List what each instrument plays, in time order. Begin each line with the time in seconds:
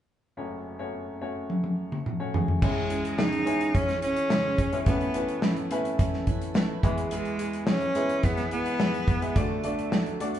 0.37 upright piano F#1 F#2 A3 C#4 F#4 C#5
0.79 upright piano A3 C#4 F#4 C#5
1.21 upright piano A3 C#4 F#4 C#5
1.50 high tom
1.64 high tom
1.92 mid tom
2.06 mid tom
2.20 upright piano A3 C#4 F#4 C#5
2.34 upright piano A3 C#4 F#4 G#4, floor tom
2.48 floor tom
2.62 upright piano C#2 C#3 G#3 C#4 E4 C#5, steel-string acoustic guitar C#3 G#3 C#4 E4 G#4, tonewheel organ E3 G#3 C#4 G#4, cello G#3, kick, crash
2.89 steel-string acoustic guitar C#4 E4 G#4, closed hi-hat
3.05 closed hi-hat
3.18 steel-string acoustic guitar C#3 G#3 C#4 E4 G#4, cello D#4, snare
3.32 closed hi-hat
3.46 upright piano G#3 C#4 E4 C#5, steel-string acoustic guitar C#4 E4 G#4, closed hi-hat
3.61 closed hi-hat
3.74 steel-string acoustic guitar G#3 C#4 E4 G#4, cello C#4, kick, closed hi-hat
3.89 snare, closed hi-hat
4.02 cello C#4, steel-string acoustic guitar C#4 E4 G#4, closed hi-hat
4.16 closed hi-hat
4.30 steel-string acoustic guitar C#3 G#3 C#4 E4 G#4, snare
4.58 steel-string acoustic guitar C#4 E4 G#4, kick, closed hi-hat
4.73 upright piano G#3 C#4 E4 C#5, closed hi-hat
4.86 upright piano A1 A2 A3 C#4 E4 B4, steel-string acoustic guitar A3 C#4 E4 B4, tonewheel organ B3 C#4 A4, cello B3, kick, closed hi-hat
5.01 closed hi-hat
5.14 upright piano A3 C#4 E4 B4, steel-string acoustic guitar C#4 E4 B4, closed hi-hat
5.28 closed hi-hat
5.42 steel-string acoustic guitar A3 C#4 E4 B4, snare
5.57 closed hi-hat
5.71 upright piano A3 C#4 E4 B4, steel-string acoustic guitar C#4 E4 B4, closed hi-hat
5.85 closed hi-hat
5.98 steel-string acoustic guitar A3 C#4 E4 B4, kick, closed hi-hat
6.13 snare
6.27 steel-string acoustic guitar C#4 E4 B4, kick, closed hi-hat
6.42 closed hi-hat
6.54 steel-string acoustic guitar A3 C#4 E4 B4, snare
6.83 upright piano E2 E3 G#3 B3 E4 B4, tonewheel organ G#3 G#4, steel-string acoustic guitar B3 E4 G#4, kick, closed hi-hat
6.98 closed hi-hat
7.11 steel-string acoustic guitar E3 B3 E4 G#4, cello G#3, closed hi-hat
7.25 closed hi-hat
7.39 steel-string acoustic guitar B3 E4 G#4, closed hi-hat
7.53 closed hi-hat
7.67 steel-string acoustic guitar E3 B3 E4 G#4, cello C#4, snare
7.81 closed hi-hat
7.95 upright piano G#3 B3 E4 B4, steel-string acoustic guitar B3 E4 G#4, closed hi-hat
8.09 closed hi-hat
8.23 steel-string acoustic guitar E3 B3 E4 G#4, cello B3, kick, closed hi-hat
8.37 snare, closed hi-hat
8.51 cello B3, steel-string acoustic guitar B3 E4 G#4, closed hi-hat
8.66 closed hi-hat
8.79 steel-string acoustic guitar E3 B3 E4 G#4, snare
8.94 closed hi-hat
9.07 steel-string acoustic guitar B3 E4 G#4, kick, closed hi-hat
9.22 upright piano G#3 B3 E4 B4, closed hi-hat
9.35 upright piano D2 D3 A3 D4 F#4 D5, steel-string acoustic guitar D3 F#3 A3 D4 A4, tonewheel organ F#3 A3 D4 A4, cello A3, kick, closed hi-hat
9.64 upright piano A3 D4 F#4 D5, steel-string acoustic guitar A3 D4 A4, closed hi-hat
9.79 closed hi-hat
9.92 steel-string acoustic guitar D3 F#3 A3 D4 A4, snare
10.06 closed hi-hat
10.20 upright piano A3 D4 F#4 D5, steel-string acoustic guitar A3 D4 A4, closed hi-hat
10.35 closed hi-hat